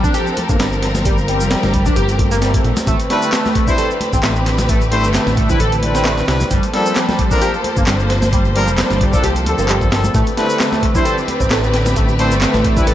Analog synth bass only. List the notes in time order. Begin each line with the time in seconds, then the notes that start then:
0.49 G1
0.59 G1
1.40 F1
1.63 G1
1.96 G1
2.64 A#1
2.87 A1
4.13 A1
4.23 A1
5.04 G1
5.26 A1
5.60 A1
6.28 C2
6.51 G1
7.77 G1
7.87 G1
8.68 F1
8.90 G1
9.24 C2
9.46 D2
9.58 G1
10.14 A1
11.40 A1
11.50 A1
12.31 G1
12.54 A1
12.87 A1